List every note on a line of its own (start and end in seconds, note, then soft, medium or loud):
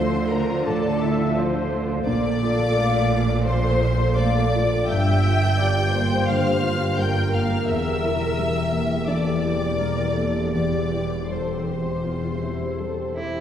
0.00 0.63 D2 medium
0.00 2.02 D2 medium
0.00 2.02 D3 medium
0.00 2.09 D3 medium
0.00 0.26 F3 soft
0.00 0.67 F3 soft
0.00 0.33 A3 medium
0.00 0.11 E4 soft
0.00 1.02 E4 medium
0.00 0.15 F4 soft
0.00 0.44 F4 medium
0.00 0.31 A4 medium
0.00 0.30 C5 medium
0.00 1.36 E5 medium
0.00 0.29 C6 medium
0.15 0.42 F4 medium
0.31 0.60 A3 soft
0.31 0.66 A#4 medium
0.31 0.67 C5 medium
0.31 0.67 A#5 medium
0.45 1.13 F4 soft
0.50 0.77 F4 medium
0.66 0.94 A2 soft
0.66 3.46 F3 soft
0.66 1.37 A4 medium
0.66 1.02 D5 medium
0.66 1.36 A5 medium
0.84 1.12 F4 soft
0.92 2.30 A3 soft
1.02 1.30 E4 soft
1.02 1.37 E5 medium
1.14 1.83 F4 medium
1.19 1.47 F4 medium
1.36 1.64 F3 soft
1.36 2.07 C5 medium
1.36 2.09 E5 medium
1.54 1.82 F4 medium
1.61 2.99 A4 medium
1.72 2.00 A3 soft
1.84 2.53 F4 medium
1.89 2.06 F4 soft
2.06 4.84 A#1 medium
2.06 4.84 A#2 medium
2.06 3.42 A#2 medium
2.06 4.92 A#2 medium
2.06 2.41 A#3 medium
2.06 3.41 D5 medium
2.06 3.42 D6 loud
2.24 2.52 A4 medium
2.31 3.68 A3 medium
2.42 2.69 F4 medium
2.42 2.76 A4 medium
2.54 3.22 F4 medium
2.60 2.87 A4 medium
2.76 3.04 A3 medium
2.76 3.46 A#3 medium
2.76 4.16 F5 medium
2.94 3.21 A4 medium
3.00 4.39 A4 medium
3.12 3.39 F4 soft
3.23 3.92 F4 medium
3.29 3.56 A4 medium
3.45 3.74 F3 soft
3.45 7.37 F3 soft
3.45 4.14 C5 medium
3.45 4.16 C5 medium
3.45 4.15 C6 loud
3.63 3.91 A4 soft
3.70 4.91 A3 soft
3.82 4.09 F4 medium
3.94 4.65 F4 soft
3.99 4.27 A4 medium
4.14 4.45 A3 soft
4.14 4.52 A#3 medium
4.14 4.87 D5 medium
4.14 7.72 F5 medium
4.14 4.88 D6 medium
4.36 4.64 A4 medium
4.41 4.91 A4 medium
4.54 4.82 F4 medium
4.54 4.89 D5 medium
4.66 5.35 F4 medium
4.73 4.90 A4 soft
4.87 7.65 G1 medium
4.87 7.65 G2 medium
4.87 7.72 G2 medium
4.87 6.25 G2 medium
4.87 5.57 E5 medium
4.87 6.25 G5 medium
4.91 6.30 G6 loud
5.09 5.36 G4 medium
5.13 6.52 G3 medium
5.26 5.53 F4 medium
5.36 6.05 F4 medium
5.43 5.70 G4 medium
5.59 5.87 G3 soft
5.59 6.99 A#4 medium
5.59 5.93 D5 medium
5.78 6.05 G4 medium
5.93 6.22 A#3 soft
5.93 6.99 C5 medium
6.07 6.76 F4 soft
6.12 6.39 G4 medium
6.27 6.57 D3 soft
6.27 7.72 D3 soft
6.27 6.98 F5 medium
6.27 6.99 F6 loud
6.45 6.74 G4 soft
6.53 7.91 G3 soft
6.63 6.91 F4 soft
6.77 7.45 F4 soft
6.77 7.08 G4 soft
6.97 7.26 G3 soft
6.97 9.09 A#4 medium
6.97 8.38 A#4 soft
6.97 7.34 G5 medium
6.97 7.34 G6 medium
7.16 7.44 G4 soft
7.23 8.61 G4 medium
7.34 7.62 A#3 soft
7.34 7.69 F5 medium
7.34 7.68 F6 medium
7.46 7.72 F4 medium
7.51 7.68 G4 soft
7.68 13.29 E1 medium
7.68 9.05 E2 medium
7.68 13.29 E2 medium
7.68 10.54 E2 medium
7.68 9.06 E5 medium
7.68 9.09 E6 medium
7.86 8.14 G4 soft
7.92 9.31 G3 soft
8.03 8.31 E4 soft
8.15 8.84 E4 soft
8.15 8.48 G4 soft
8.38 8.66 G3 soft
8.38 9.80 A#4 soft
8.55 8.84 G4 soft
8.62 10.04 G4 soft
8.72 9.01 A#3 soft
8.85 9.55 E4 soft
8.90 9.19 G4 soft
9.08 9.37 E3 soft
9.08 10.58 E3 soft
9.08 9.44 A4 medium
9.08 10.53 D5 medium
9.08 10.53 D6 medium
9.26 9.55 G4 soft
9.32 10.79 G3 soft
9.43 9.73 E4 soft
9.43 9.80 G4 soft
9.57 10.29 E4 soft
9.61 9.91 G4 soft
9.80 10.10 G3 soft
9.80 10.17 A#4 soft
9.80 10.58 A#4 soft
9.98 10.28 G4 soft
10.05 11.55 G4 soft
10.16 10.47 A#3 soft
10.16 10.54 A4 soft
10.30 11.04 E4 soft
10.36 10.55 G4 soft
10.53 12.01 E2 soft
10.53 12.05 E2 soft
10.53 11.22 G4 soft
10.53 11.29 D5 medium
10.53 11.29 D6 medium
10.73 11.04 G4 soft
10.80 12.31 G3 soft
10.91 11.22 E4 soft
11.06 11.80 E4 soft
11.11 11.41 G4 soft
11.28 11.60 G3 soft
11.28 11.64 A4 medium
11.28 13.17 C5 soft
11.28 12.80 C5 soft
11.28 13.17 C6 soft
11.49 11.79 G4 soft
11.56 13.04 G4 soft
11.67 11.97 C4 soft
11.67 12.05 G4 soft
11.81 12.55 E4 soft
11.85 12.16 G4 soft
12.03 13.40 E2 soft
12.03 12.41 F4 soft
12.24 12.54 E4 soft
12.32 13.40 G3 soft
12.41 12.72 C4 soft
12.41 12.79 E4 soft
12.56 13.29 E4 soft
12.62 12.91 G4 soft
12.79 13.09 G3 soft
12.79 13.16 A4 medium
12.79 13.40 C5 soft
12.98 13.28 G4 soft
13.05 13.40 G4 soft
13.16 13.40 C4 soft
13.16 13.40 E4 medium
13.16 13.40 G4 soft
13.30 13.40 E4 soft
13.30 13.40 G4 soft